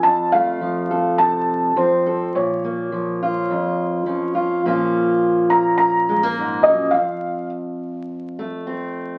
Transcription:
<<
  \new Staff \with { instrumentName = "Felt piano" } { \time 4/4 \key bes \minor \tempo 4 = 104 a''8 f''4. a''4 c''4 | des''2. r4 | r4. bes''8 bes''4. ees''8 | f''4 r2. | }
  \new Staff \with { instrumentName = "Steel-string acoustic guitar" } { \time 4/4 \key bes \minor << { f'8 a4 a'4. c'8 a'8 | r8 bes4 f'4. des'8 f'8 | <f bes des' f'>2~ <f bes des' f'>8 aes16 bes4~ bes16 | r2 r8 a8 c'4 | } \\ { f,4 f4 c4 f4 | bes,4 f4 f,4 f4 | bes,2. aes,8 ges,8 | f,1 | } >> }
>>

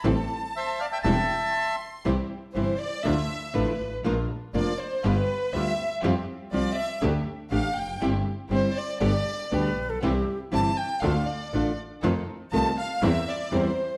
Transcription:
<<
  \new Staff \with { instrumentName = "Bandoneon" } { \time 4/4 \key a \minor \tempo 4 = 120 r4 <c'' e''>8 <d'' f''>16 <e'' g''>16 <e'' a''>4. r8 | \key c \major r1 | r1 | r1 |
r1 | r1 | r1 | }
  \new Staff \with { instrumentName = "Violin section" } { \time 4/4 \key a \minor a''2 g''4 c'''4 | \key c \major r4 c''8 d''8 e''4 b'8. r16 | r4 d''8 c''8 b'4 e''8. r16 | r4 d''8 e''8 r4 f''8 g''8 |
r4 c''8 d''8 d''4. r8 | r4 a''8 g''8 f''8 d''4 r8 | r4 a''8 f''8 e''8 d''8 c''8. r16 | }
  \new Staff \with { instrumentName = "Flute" } { \time 4/4 \key a \minor r1 | \key c \major r1 | r1 | r1 |
r2. b'8. a'16 | g'8. r2. r16 | r1 | }
  \new Staff \with { instrumentName = "String section" } { \time 4/4 \key a \minor <c' g' a'>8 r4. <c' g' a'>8 r4. | \key c \major <c' e' g'>8 r8 <c' e' g'>8 r8 <d' e' f'>8 r8 <d' e' f'>8 r8 | <bes d' f'>8 r8 <bes d' f'>8 r8 <b f' g'>8 r8 <b f' g'>8 r8 | <c' f' g'>8 r8 <c' f' g'>8 r8 <a d' g'>8 r8 <a d' g'>8 r8 |
<c' e' g'>8 r8 <c' e' g'>8 r8 <b d' g'>8 r8 <b d' g'>8 r8 | <c' e' g'>8 r8 <c' e' g'>8 r8 <d' f' a'>8 r8 <d' f' a'>8 r8 | <ees' f' a'>8 r8 <ees' f' a'>8 r8 <c' e' bes'>8 r8 <c' e' bes'>8 r8 | }
  \new Staff \with { instrumentName = "Nylon-string guitar" } { \time 4/4 \key a \minor <e g c' e'>8 r4. <e g c' e'>8 r4. | \key c \major <c e g c' e'>8 r8 <c e g c' e'>8 r8 <d f a d' e'>8 r8 <d f a d' e'>8 r8 | <f bes d' f'>8 r8 <f bes d' f'>8 r8 <g b f'>8 r8 <g b f'>8 r8 | <f g c' f'>8 r8 <f g c' f'>8 r8 <d a d' g'>8 r8 <d a d' g'>8 r8 |
<g c' e'>8 r8 <g c' e'>8 r8 <b, d g b g'>8 r8 <b, d g b g'>8 r8 | <c e g c' e'>8 r8 <c e g c' e'>8 r8 <d a d' f'>8 r8 <d a d' f'>8 r8 | <c ees a c' f'>8 r8 <c ees a c' f'>8 r8 <e g c' e'>8 r8 <e g c' e'>8 r8 | }
  \new Staff \with { instrumentName = "Double bass" } { \clef bass \time 4/4 \key a \minor a,,8 r4. e,,8 r4. | \key c \major c,8 r8 g,,8 r8 d,8 r8 a,,8 aes,,8 | bes,,8 r8 f,,8 r8 g,,8 r8 d,8 r8 | f,8 r8 c,8 r8 d,8 r8 a,,8 f,,8 |
g,,8 r8 g,,8 r8 g,,8 r8 d,8 bes,,8 | c,8 r8 g,,8 r8 d,8 r8 a,,8 r8 | f,8 r8 c,8 r8 e,8 r8 e,8 r8 | }
>>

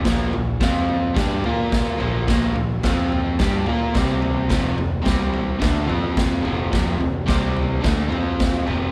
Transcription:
<<
  \new Staff \with { instrumentName = "Overdriven electric guitar" } { \clef bass \time 4/4 \key bes \lydian \tempo 4 = 108 <bes, f bes>8 <bes, f>8 <f c' f'>4 <g d' g'>8 <bes f' bes'>4 <bes, f bes>8 | <bes, f bes>8 <bes, f>8 <f c' f'>4 <g d' g'>8 <bes f' bes'>8 <c g c'>4 | <f, c f>8 <f, c>8 <c g c'>4 <d a d'>8 <f c' f'>4 <f, c f>8 | <f, c f>8 <f, c>8 <c g c'>4 <d a d'>8 <f c' f'>4 <f, c f>8 | }
  \new Staff \with { instrumentName = "Picked electric bass" } { \clef bass \time 4/4 \key bes \lydian bes,,8 bes,,8 f,4 g,8 bes,4 bes,,8 | bes,,8 bes,,8 f,4 g,8 bes,8 c,4 | f,,8 f,,8 c,4 d,8 f,4 f,,8 | f,,8 f,,8 c,4 d,8 f,4 f,,8 | }
  \new DrumStaff \with { instrumentName = "Drums" } \drummode { \time 4/4 <bd sn tomfh>8 tomfh8 <bd sn tomfh>8 tomfh8 <bd sn tomfh>8 tomfh8 <bd sn tomfh>8 tomfh8 | <bd sn tomfh>8 tomfh8 <bd sn tomfh>8 tomfh8 <bd sn tomfh>8 tomfh8 <bd sn tomfh>8 tomfh8 | <bd sn tomfh>8 tomfh8 <bd sn tomfh>8 tomfh8 <bd sn tomfh>8 tomfh8 <bd sn tomfh>8 tomfh8 | <bd sn tomfh>8 tomfh8 <bd sn tomfh>8 tomfh8 <bd sn tomfh>8 tomfh8 <bd sn tomfh>8 tomfh8 | }
>>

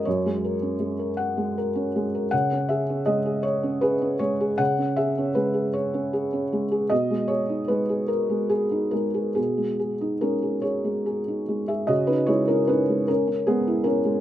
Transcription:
\new Staff \with { instrumentName = "Felt piano" } { \time 6/8 \key cis \dorian \tempo 4. = 52 << { cis''4. fis''8 r4 | fis''8 e''8 dis''8 cis''8 b'8 cis''8 | fis''8 e''8 b'8 cis''4. | dis''8 cis''8 b'8 ais'8 gis'8 ais'8 |
gis'4 <cis' ais'>8 <gis' cis''>4~ <gis' cis''>16 e''16 | <fis' dis''>16 <dis' b'>16 <e' cis''>16 <cis' ais'>16 <dis' b'>8 <cis' ais'>8 <b gis'>8 <cis' ais'>8 | } \\ { <fis, ais'>16 gis16 ais'16 cis'16 gis16 ais'8 gis16 ais'16 cis'16 gis16 ais'16 | cis16 cis'16 gis'16 cis'16 gis16 gis'8 cis'16 gis'16 cis'16 gis16 gis'16 | cis16 cis'16 gis'16 cis'16 gis16 gis'8 cis'16 gis'16 cis'16 gis16 gis'16 | b,16 gis16 gis'16 dis'16 gis16 gis'8 gis8 dis'16 gis16 gis'16 |
b,16 gis16 gis'16 dis'16 gis16 gis'8 gis16 gis'16 dis'16 gis16 gis'16 | cis16 cis'16 gis16 e'16 cis'16 gis8 cis'16 gis16 e'8 gis16 | } >> }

